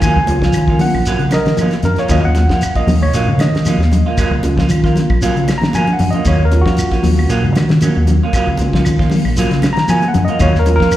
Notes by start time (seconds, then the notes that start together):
0.01 D#3 F#3 A#3 C#4 F4 G#5, kick, closed hi-hat, high conga, claves, shekere
0.16 C#2, muted clean electric guitar stroke
0.27 C#2 F#3 C#4 F4, muted clean electric guitar stroke, closed hi-hat, high conga, shekere
0.41 F3 C#4 F4, kick, snare
0.45 A#3
0.53 D#3, muted clean electric guitar stroke, closed hi-hat, high conga, claves, shekere
0.68 A#3 C#4 F4, kick
0.79 F#3 F#5, open hi-hat, high conga, low conga, shekere
0.94 A#1, muted clean electric guitar stroke, claves
1.05 F#3 A#3 C#4 F4, closed hi-hat, high conga, shekere
1.19 C#3, muted clean electric guitar stroke, closed hi-hat
1.31 A#4 D#5, muted clean electric guitar stroke, snare, closed hi-hat, high conga, low conga, claves, shekere
1.46 D#3, snare, closed hi-hat
1.57 F3 F#3, closed hi-hat, high conga, low conga, claves, shekere
1.61 A#3 C#4 F4
1.71 muted clean electric guitar stroke, snare, closed hi-hat
1.83 F#2 F#3 A#4, muted clean electric guitar stroke, closed hi-hat, low conga, shekere
1.96 A#3 C#4 F4 C#5, snare, closed hi-hat
2.08 D#2 D#3 F#3 A#3 C#4 F4 D#5, kick, snare, closed hi-hat, high conga, claves, shekere
2.20 D#2 F5, muted clean electric guitar stroke
2.25 F#5
2.35 muted clean electric guitar stroke, snare, closed hi-hat, high conga, shekere
2.49 F3 A#3 C#4 F4, kick, snare
2.61 muted clean electric guitar stroke, closed hi-hat, high conga, claves, shekere
2.75 A#3 C#4 F4 D#5, muted fingered electric bass stroke, kick, closed hi-hat
2.87 D#2 F#3, open hi-hat, high conga, low conga, shekere
3.02 C#5, muted clean electric guitar stroke, claves
3.12 A#1 F#3 A#3 C#4 F4, closed hi-hat, high conga, shekere
3.26 G#2 C#3, muted clean electric guitar stroke
3.38 D#3 D#5, muted clean electric guitar stroke, snare, closed hi-hat, high conga, low conga, claves, shekere
3.54 D#3, snare, closed hi-hat
3.65 F3 F#3 A#3 C#4 F4, closed hi-hat, high conga, low conga, claves, shekere
3.78 D#2, muted clean electric guitar stroke, snare, high conga
3.92 F#3, muted clean electric guitar stroke, closed hi-hat, low conga, shekere
4.06 A#3 C#4 F4
4.17 F#3 A#3 C#4 F4, muted clean electric guitar stroke, kick, closed hi-hat, high conga, claves, shekere
4.31 C#2, muted clean electric guitar stroke
4.43 C#2 F#3 C#4 F4, muted clean electric guitar stroke, closed hi-hat, high conga, shekere
4.57 F3 A#3 C#4 F4, kick, snare
4.69 D#3, muted clean electric guitar stroke, closed hi-hat, high conga, claves, shekere
4.84 A#3 F4, kick, snare
4.95 F#3, snare, closed hi-hat, high conga, low conga, shekere
5.10 A#1, muted clean electric guitar stroke, kick, claves
5.22 F#3 A#3 C#4 F4, closed hi-hat, high conga, shekere
5.36 C#3, muted clean electric guitar stroke, closed hi-hat
5.48 muted clean electric guitar stroke, snare, closed hi-hat, high conga, claves, shekere
5.58 A#5, high conga
5.62 D#3, snare, closed hi-hat
5.73 F3 F#3 A#3 C#4 F4 G#5, closed hi-hat, high conga, claves, shekere
5.87 muted clean electric guitar stroke, closed hi-hat, low conga
5.93 F#5
5.99 F#2 F#3, muted clean electric guitar stroke, open hi-hat, low conga, shekere
6.11 F4 D#5, closed hi-hat, low conga
6.15 A#3 C#4
6.25 D#2 D#3 F#3 A#3 C#4 F4 C#5, kick, closed hi-hat, high conga, claves, shekere
6.39 D#2, muted clean electric guitar stroke
6.45 A#4
6.52 F#3 C#4 F4, muted clean electric guitar stroke, closed hi-hat, high conga, shekere
6.61 F#4
6.66 F3 C#4 F4, kick, snare
6.77 muted clean electric guitar stroke, closed hi-hat, high conga, claves, shekere
6.91 A#3 C#4 F4, muted fingered electric bass stroke, kick, snare, closed hi-hat
7.03 D#2 F#3, open hi-hat, high conga, low conga, shekere
7.17 muted clean electric guitar stroke, claves
7.29 A#1 F#3 A#3 C#4 F4, closed hi-hat, high conga, shekere
7.44 G#2 C#3, muted clean electric guitar stroke
7.55 D#3, muted clean electric guitar stroke, snare, closed hi-hat, high conga, low conga, claves, shekere
7.69 D#3, snare, closed hi-hat
7.81 F#3 A#3 C#4, muted clean electric guitar stroke, closed hi-hat, high conga, low conga, claves, shekere
7.95 D#2, muted clean electric guitar stroke, high conga
8.07 F#3, muted clean electric guitar stroke, closed hi-hat, low conga, shekere
8.23 A#3 C#4 F4
8.32 F#3 A#3 C#4 F4, muted clean electric guitar stroke, kick, closed hi-hat, high conga, claves, shekere
8.47 C#2, muted clean electric guitar stroke
8.57 C#2 F#3 C#4 F4, muted clean electric guitar stroke, closed hi-hat, high conga, shekere
8.73 F3 A#3 C#4 F4, kick, snare
8.84 D#3, muted clean electric guitar stroke, closed hi-hat, high conga, claves, shekere
8.99 A#3 C#4 F4, kick, snare
9.10 F#3, open hi-hat, high conga, low conga, shekere
9.25 A#1, muted clean electric guitar stroke, claves
9.36 F#3 A#3 C#4 F4, closed hi-hat, high conga, shekere
9.50 C#3, muted clean electric guitar stroke, snare, closed hi-hat
9.62 muted clean electric guitar stroke, snare, closed hi-hat, high conga, low conga, claves, shekere
9.73 D#3 A#5, closed hi-hat
9.78 snare
9.88 F3 F#3 A#3 C#4 F4 G#5, closed hi-hat, high conga, claves, shekere
10.02 muted clean electric guitar stroke, closed hi-hat, high conga
10.08 F#5
10.14 F#2 F#3, muted clean electric guitar stroke, closed hi-hat, low conga, shekere
10.25 C#4 D#5, closed hi-hat
10.29 A#3 F4
10.39 D#2 D#3 F#3 A#3 C#4 F4 C#5, kick, closed hi-hat, claves, shekere
10.54 D#2, muted clean electric guitar stroke, snare
10.59 A#4
10.66 F#3 C#4 F4, muted clean electric guitar stroke, closed hi-hat, high conga, shekere
10.76 A#4
10.80 F3 A#3 C#4 F4, kick, snare
10.91 muted clean electric guitar stroke, closed hi-hat, high conga, claves, shekere